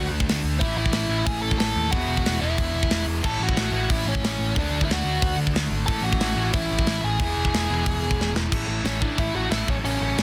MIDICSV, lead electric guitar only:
0, 0, Header, 1, 2, 480
1, 0, Start_track
1, 0, Key_signature, 3, "major"
1, 0, Tempo, 329852
1, 885, Time_signature, 4, 2, 24, 8
1, 14884, End_track
2, 0, Start_track
2, 0, Title_t, "Lead electric guitar"
2, 0, Program_c, 0, 29
2, 873, Note_on_c, 0, 76, 103
2, 883, Note_on_c, 0, 64, 68
2, 1101, Note_off_c, 0, 76, 0
2, 1103, Note_off_c, 0, 64, 0
2, 1126, Note_on_c, 0, 76, 101
2, 1136, Note_on_c, 0, 64, 63
2, 1793, Note_off_c, 0, 76, 0
2, 1794, Note_off_c, 0, 64, 0
2, 1842, Note_on_c, 0, 80, 99
2, 1851, Note_on_c, 0, 68, 74
2, 2054, Note_off_c, 0, 80, 0
2, 2054, Note_on_c, 0, 81, 107
2, 2056, Note_off_c, 0, 68, 0
2, 2062, Note_on_c, 0, 69, 89
2, 2286, Note_off_c, 0, 81, 0
2, 2292, Note_off_c, 0, 69, 0
2, 2306, Note_on_c, 0, 81, 104
2, 2308, Note_on_c, 0, 69, 83
2, 2755, Note_off_c, 0, 81, 0
2, 2757, Note_off_c, 0, 69, 0
2, 2782, Note_on_c, 0, 78, 112
2, 2796, Note_on_c, 0, 66, 80
2, 3463, Note_off_c, 0, 66, 0
2, 3508, Note_off_c, 0, 78, 0
2, 3514, Note_on_c, 0, 76, 109
2, 3523, Note_on_c, 0, 64, 75
2, 4412, Note_off_c, 0, 76, 0
2, 4416, Note_off_c, 0, 64, 0
2, 4722, Note_on_c, 0, 69, 87
2, 4733, Note_on_c, 0, 81, 111
2, 4939, Note_off_c, 0, 69, 0
2, 4964, Note_off_c, 0, 81, 0
2, 4988, Note_on_c, 0, 66, 82
2, 4998, Note_on_c, 0, 78, 92
2, 5638, Note_off_c, 0, 66, 0
2, 5640, Note_off_c, 0, 78, 0
2, 5677, Note_on_c, 0, 64, 76
2, 5689, Note_on_c, 0, 76, 90
2, 5894, Note_off_c, 0, 64, 0
2, 5901, Note_off_c, 0, 76, 0
2, 5933, Note_on_c, 0, 61, 71
2, 5948, Note_on_c, 0, 73, 92
2, 6588, Note_off_c, 0, 61, 0
2, 6623, Note_on_c, 0, 62, 65
2, 6666, Note_off_c, 0, 73, 0
2, 6676, Note_on_c, 0, 74, 90
2, 6957, Note_off_c, 0, 62, 0
2, 7009, Note_on_c, 0, 64, 66
2, 7019, Note_off_c, 0, 74, 0
2, 7055, Note_on_c, 0, 76, 72
2, 7108, Note_off_c, 0, 64, 0
2, 7132, Note_on_c, 0, 66, 71
2, 7141, Note_off_c, 0, 76, 0
2, 7172, Note_on_c, 0, 78, 85
2, 7787, Note_off_c, 0, 66, 0
2, 7809, Note_off_c, 0, 78, 0
2, 8530, Note_on_c, 0, 81, 121
2, 8545, Note_on_c, 0, 69, 84
2, 8766, Note_off_c, 0, 69, 0
2, 8775, Note_on_c, 0, 78, 109
2, 8783, Note_off_c, 0, 81, 0
2, 8787, Note_on_c, 0, 66, 78
2, 9447, Note_off_c, 0, 78, 0
2, 9453, Note_off_c, 0, 66, 0
2, 9525, Note_on_c, 0, 76, 85
2, 9535, Note_on_c, 0, 64, 68
2, 10189, Note_off_c, 0, 64, 0
2, 10249, Note_on_c, 0, 80, 86
2, 10254, Note_off_c, 0, 76, 0
2, 10256, Note_on_c, 0, 68, 69
2, 12101, Note_off_c, 0, 80, 0
2, 12105, Note_off_c, 0, 68, 0
2, 12875, Note_on_c, 0, 61, 65
2, 12908, Note_on_c, 0, 73, 89
2, 13097, Note_off_c, 0, 61, 0
2, 13109, Note_on_c, 0, 62, 73
2, 13121, Note_off_c, 0, 73, 0
2, 13121, Note_on_c, 0, 74, 83
2, 13335, Note_off_c, 0, 62, 0
2, 13365, Note_off_c, 0, 74, 0
2, 13371, Note_on_c, 0, 64, 71
2, 13382, Note_on_c, 0, 76, 85
2, 13588, Note_off_c, 0, 64, 0
2, 13608, Note_on_c, 0, 66, 84
2, 13612, Note_off_c, 0, 76, 0
2, 13618, Note_on_c, 0, 78, 89
2, 13828, Note_off_c, 0, 66, 0
2, 13831, Note_off_c, 0, 78, 0
2, 13838, Note_on_c, 0, 76, 97
2, 13842, Note_on_c, 0, 64, 63
2, 14062, Note_off_c, 0, 64, 0
2, 14087, Note_off_c, 0, 76, 0
2, 14111, Note_on_c, 0, 61, 54
2, 14115, Note_on_c, 0, 73, 76
2, 14183, Note_off_c, 0, 73, 0
2, 14186, Note_off_c, 0, 61, 0
2, 14325, Note_on_c, 0, 61, 69
2, 14327, Note_on_c, 0, 73, 73
2, 14884, Note_off_c, 0, 61, 0
2, 14884, Note_off_c, 0, 73, 0
2, 14884, End_track
0, 0, End_of_file